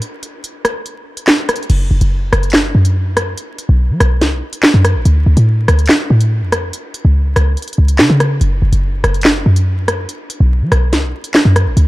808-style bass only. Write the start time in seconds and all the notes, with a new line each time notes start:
1.70 F#1
1.91 F#1
2.01 F#1
2.33 F#1
2.75 F#2
3.69 B1
3.90 F#3
4.01 B1
4.22 C#2
4.32 B1
4.74 F#2
4.95 A1
5.05 D2
5.26 D2
5.37 A2
5.68 D2
6.10 A2
6.42 F2
7.05 C#2
7.36 C#2
7.78 C#2
7.99 C#3
8.10 C#3
8.41 F#1
8.62 F#1
8.72 F#1
9.04 F#1
9.46 F#2
10.40 B1
10.61 F#3
10.72 B1
10.93 C#2
11.03 B1
11.45 F#2
11.66 A1
11.77 D2